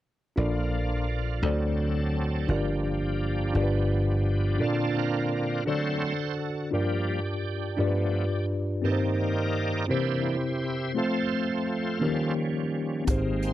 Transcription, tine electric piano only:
0.36 A#2 D4 F4 A4 A#4 D5
1.42 D3 D4 F#4 A4 C5 D5
2.48 G2 D4 F4 G4 A#4 D5
3.54 G2 D4 F4 G4 A#4 D5
3.63 B4
4.58 A#2 D4 F4 A4 A#4 D5
5.65 D3 D4 F#4 A4 C5 D5
6.71 G2 D4 F4 G4 A#4 D5
7.77 G2 D4 F4 G4 A#4 D5
7.86 B4
8.82 G2 C4 D#4 G4 A#4 B4
8.92 C5
9.88 C3 C4 E4 G4 A#4 C5
10.95 A3 C4 F4 A4 C5
11.99 D#3 A#3 C#4 D#4 G4 A#4
13.05 G#2 C4 D#4 G4
13.09 G#4 C5

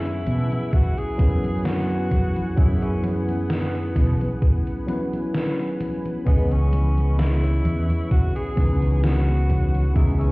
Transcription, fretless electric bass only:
Already playing: F#2
0.27 B2
1.19 F#2
2.57 F#2
3.96 B2
6.26 C#2
7.65 E2
8.57 C#2
9.96 C#2

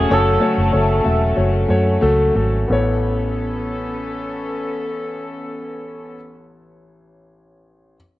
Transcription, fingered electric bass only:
0.11 F#1
0.58 F#1
0.74 F#1
1.06 E1
1.38 F#1
1.70 F#2
2.03 C#2
2.36 G#1
2.70 A1

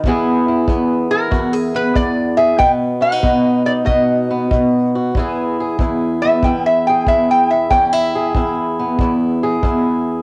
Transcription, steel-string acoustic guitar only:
0.05 E2 E3 B3 E4 G#4
0.48 E4
0.68 E2 B3
1.11 E4
1.31 E2 F#4
1.53 G#4
1.74 B3
1.95 E2
2.38 G#4
2.58 B2 B3
3.01 C#4
3.12 D#4
3.23 B2 B3
3.66 D#4
3.85 B2 F#4
4.31 B3
4.51 B2
4.95 F#4
5.16 E2 E3 B3 E4 G#4
5.60 G#4
5.80 E2 E4
6.24 B3
6.45 E2 E4
6.89 G#4
7.08 E2 E4
7.71 E2 C#4
7.93 E4
8.15 G#4
8.35 E2 E4
8.80 B3
9.00 E2 E4
9.43 G#4
9.63 E2 E4

